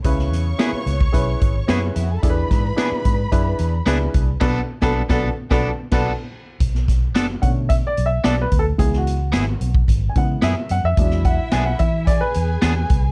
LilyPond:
<<
  \new Staff \with { instrumentName = "String section" } { \time 4/4 \key b \dorian \tempo 4 = 110 <cis'' cis'''>2.~ <cis'' cis'''>16. r32 <e' e''>32 <fis' fis''>32 <gis' gis''>32 <a' a''>32 | <b' b''>2.~ <b' b''>8 r8 | <a' a''>8 r16 <a' a''>8 <a' a''>8 r16 <a' a''>8 r16 <a' a''>8 r8. | r1 |
r1 | <e' e''>2 <gis' gis''>2 | }
  \new Staff \with { instrumentName = "Upright piano" } { \time 4/4 \key b \dorian <cis' e' gis' b'>8. r16 <cis' e' gis' ais' b'>8. r16 <cis' e' gis' b'>8. r16 <cis' e' gis' b'>8. r16 | <d' e' gis' a' b'>8. r16 <d' e' gis' b'>8. r16 <d' e' gis' b'>8. r16 <d' e' gis' b'>8. r16 | <b, d' fis' a' b'>8 r16 <d' fis' a' b'>8 <d' fis' a' b'>8 r16 <d' fis' a' b'>8 r16 <d' fis' a' b'>8 r8. | r4. fis''8 \tuplet 3/2 { e''8 d''8 e''8 d''8 b'8 a'8 } |
\tuplet 3/2 { gis'8 fis'4~ } fis'8.~ fis'32 r8 gis''32 fis''8 e''8 fis''16 e''16~ | e''8 fis''8 gis''16 fis''16 e''8 d''16 b'4. r16 | }
  \new Staff \with { instrumentName = "Upright piano" } { \clef bass \time 4/4 \key b \dorian cis4. r2 r8 | e4. r2 r8 | r1 | r4. <d a cis'>8 r2 |
<e gis b>8 r2 <e gis b>8 r4 | <fis gis d'>8 r2. r8 | }
  \new Staff \with { instrumentName = "Clean electric guitar" } { \time 4/4 \key b \dorian r4 <b e' gis'>8 r4. <b e' gis'>8 r8 | r4 <b d' gis'>8 r4. <b d' gis'>8 r8 | <b d' a'>8 r16 <b d' a'>8 <b d' a'>8 r16 <b d' a'>8 r16 <b d' a'>8 r8. | r4 <b d' a'>8 r4. <b d' a'>8 r8 |
r4 <b e' gis'>8 r4. <b e' gis'>8 r8 | r4 <b d' gis'>8 r4. <b d' gis'>8 r8 | }
  \new Staff \with { instrumentName = "Fingered electric bass" } { \clef bass \time 4/4 \key b \dorian cis,8 e,8 r8 cis,8 b,,8 gis,,8 fis,8 eis,8 | e,8 gis,8 r8 gis,8 fis,8 e,8 cis,8 c,8 | b,,8 r16 b,,8 b,,8 r16 b,,8 r16 b,,8 r8. | b,,4 fis,,8 b,4 b,,8 b,,8 d,8 |
cis,4 gis,,8 b,,8 gis,,8 cis8 fis,16 r16 fis,16 eis,16 | e,4 b,,8 e4 e,8 e,8 c,8 | }
  \new DrumStaff \with { instrumentName = "Drums" } \drummode { \time 4/4 <hh bd>16 sn16 <hh sn>8 <hh sn>8 hh16 bd16 <hh bd>8 <hh bd>8 <hh sn>8 hh8 | <hh bd>8 <hh bd sn>8 <hh sn>8 <hh bd>8 <hh bd>8 hh8 <hh sn>8 <hh bd>8 | <cymc bd sn>8. <bd sn>16 r16 <bd sn>8. <bd sn>8. <cymc bd sn>16 r4 | <hh bd>16 sn16 <hh bd sn>8 <hh sn>8 <hh bd>8 <hh bd>8 hh8 <hh sn>8 <hh bd>8 |
<hh bd>16 sn16 hh8 <hh sn>8 hh16 bd16 <hh bd>8 <hh bd>8 <hh sn>8 hh8 | <hh bd>16 sn16 <hh bd>8 <hh sn>8 <hh bd>8 <hh bd>8 hh8 <hh sn>8 <hh bd>8 | }
>>